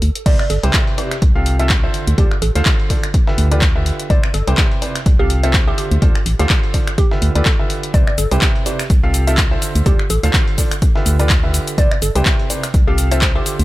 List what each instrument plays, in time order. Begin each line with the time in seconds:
0.02 fm bass D2, open hi-hat
0.15 closed hi-hat
0.26 fm bass C2, grand piano C3 E4 B4 C5 D5, synth pluck D5, kick, closed hi-hat, crash
0.39 synth pluck D5, finger snap
0.50 fm bass G1, synth pluck A4, closed hi-hat, open hi-hat
0.63 fm bass C2, grand piano C3 E4 B4 C5 G5, synth pluck G4, closed hi-hat
0.73 kick, snare, clap, closed hi-hat
0.87 closed hi-hat
0.98 grand piano C3 E4 B4 C5 D5, synth pluck G4, closed hi-hat, open hi-hat
1.11 finger snap, snare, closed hi-hat
1.22 fm bass C2, kick, closed hi-hat
1.35 grand piano C4 F4 G4 A4 F5
1.46 closed hi-hat, open hi-hat
1.59 grand piano C4 F4 G4 A4 E5, closed hi-hat
1.69 kick, snare, clap, closed hi-hat
1.83 grand piano D3 F4 A4 C5 E5
1.94 closed hi-hat, open hi-hat
2.07 fm bass D2, closed hi-hat
2.18 fm bass D2, grand piano D3 F4 A4 C5 D5, synth pluck G4, kick, closed hi-hat
2.31 finger snap
2.42 fm bass A1, synth pluck A4, closed hi-hat, open hi-hat
2.55 fm bass D2, grand piano D3 F4 A4 C5 F5, snare, closed hi-hat
2.65 kick, snare, clap, closed hi-hat
2.79 closed hi-hat
2.90 grand piano D3 F4 A4 C5 D5, kick, open hi-hat
3.03 finger snap, closed hi-hat
3.14 kick, closed hi-hat
3.27 grand piano D3 F4 G4 B4 E5, snare
3.38 fm bass D2, closed hi-hat, open hi-hat
3.51 grand piano D3 F4 G4 B4 D5, closed hi-hat
3.62 kick, snare, clap, closed hi-hat
3.75 grand piano D3 F4 G4 B4 E5
3.86 closed hi-hat, open hi-hat
4.00 closed hi-hat
4.10 fm bass C2, grand piano C3 E4 B4 C5 D5, synth pluck D5, kick, closed hi-hat
4.23 synth pluck D5, finger snap
4.34 fm bass G1, synth pluck A4, closed hi-hat, open hi-hat
4.47 fm bass C2, grand piano C3 E4 B4 C5 G5, synth pluck G4, closed hi-hat
4.57 kick, snare, clap, closed hi-hat
4.72 closed hi-hat
4.82 grand piano C3 E4 B4 C5 D5, closed hi-hat, open hi-hat
4.96 finger snap, snare, closed hi-hat
5.06 fm bass C2, kick, closed hi-hat
5.19 grand piano C4 F4 G4 A4 F5, synth pluck G4
5.30 closed hi-hat, open hi-hat
5.43 grand piano C4 F4 G4 A4 E5, synth pluck C5, closed hi-hat
5.54 kick, snare, clap, closed hi-hat
5.67 grand piano D3 F4 A4 C5 E5, synth pluck G4
5.78 synth pluck G4, closed hi-hat, open hi-hat
5.91 fm bass D2, closed hi-hat
6.02 fm bass D2, grand piano D3 F4 A4 C5 D5, kick, closed hi-hat
6.15 finger snap
6.26 fm bass A1, closed hi-hat, open hi-hat
6.39 fm bass D2, grand piano D3 F4 A4 C5 F5, synth pluck G4, snare, closed hi-hat
6.49 kick, snare, clap, closed hi-hat
6.63 closed hi-hat
6.74 grand piano D3 F4 A4 C5 D5, kick, open hi-hat
6.87 finger snap, closed hi-hat
6.98 synth pluck G4, kick, closed hi-hat
7.11 grand piano D3 F4 G4 B4 E5, snare
7.22 fm bass D2, closed hi-hat, open hi-hat
7.35 fm bass D2, grand piano D3 F4 G4 B4 D5, synth pluck A4, closed hi-hat
7.45 synth pluck A4, kick, snare, clap, closed hi-hat
7.59 grand piano D3 F4 G4 B4 E5
7.70 closed hi-hat, open hi-hat
7.83 closed hi-hat
7.94 fm bass C2, grand piano C3 E4 B4 C5 D5, synth pluck D5, kick, closed hi-hat, shaker
8.07 synth pluck D5, finger snap
8.18 fm bass G1, synth pluck A4, closed hi-hat, open hi-hat, shaker
8.31 fm bass C2, grand piano C3 E4 B4 C5 G5, synth pluck G4, closed hi-hat, shaker
8.41 kick, snare, clap, closed hi-hat, shaker
8.55 closed hi-hat
8.66 grand piano C3 E4 B4 C5 D5, synth pluck G4, closed hi-hat, open hi-hat, shaker
8.79 finger snap, snare, closed hi-hat, shaker
8.90 fm bass C2, kick, closed hi-hat, shaker
9.03 grand piano C4 F4 G4 A4 F5
9.14 closed hi-hat, open hi-hat, shaker
9.27 grand piano C4 F4 G4 A4 E5, closed hi-hat, shaker
9.37 kick, snare, clap, closed hi-hat, shaker
9.51 grand piano D3 F4 A4 C5 E5
9.62 closed hi-hat, open hi-hat, shaker
9.75 fm bass D2, closed hi-hat, shaker
9.86 fm bass D2, grand piano D3 F4 A4 C5 D5, synth pluck G4, kick, closed hi-hat, shaker
9.99 finger snap
10.10 fm bass A1, synth pluck A4, closed hi-hat, open hi-hat, shaker
10.23 fm bass D2, grand piano D3 F4 A4 C5 F5, snare, closed hi-hat, shaker
10.33 kick, snare, clap, closed hi-hat, shaker
10.47 closed hi-hat
10.58 grand piano D3 F4 A4 C5 D5, kick, open hi-hat, shaker
10.71 finger snap, closed hi-hat, shaker
10.82 kick, closed hi-hat, shaker
10.95 grand piano D3 F4 G4 B4 E5, snare
11.06 fm bass D2, closed hi-hat, open hi-hat, shaker
11.19 grand piano D3 F4 G4 B4 D5, closed hi-hat, shaker
11.29 kick, snare, clap, closed hi-hat, shaker
11.43 grand piano D3 F4 G4 B4 E5
11.54 closed hi-hat, open hi-hat, shaker
11.67 closed hi-hat, shaker
11.78 fm bass C2, grand piano C3 E4 B4 C5 D5, synth pluck D5, kick, closed hi-hat, shaker
11.91 synth pluck D5, finger snap
12.02 fm bass G1, synth pluck A4, closed hi-hat, open hi-hat, shaker
12.15 fm bass C2, grand piano C3 E4 B4 C5 G5, synth pluck G4, closed hi-hat, shaker
12.26 kick, snare, clap, closed hi-hat, shaker
12.39 closed hi-hat
12.50 grand piano C3 E4 B4 C5 D5, closed hi-hat, open hi-hat, shaker
12.63 finger snap, snare, closed hi-hat, shaker
12.74 fm bass C2, kick, closed hi-hat, shaker
12.87 grand piano C4 F4 G4 A4 F5, synth pluck G4
12.98 closed hi-hat, open hi-hat, shaker
13.11 grand piano C4 F4 G4 A4 E5, synth pluck C5, closed hi-hat, shaker
13.22 kick, snare, clap, closed hi-hat, shaker
13.35 grand piano D3 F4 A4 C5 E5, synth pluck G4
13.46 synth pluck G4, closed hi-hat, open hi-hat, shaker
13.59 fm bass D2, closed hi-hat, shaker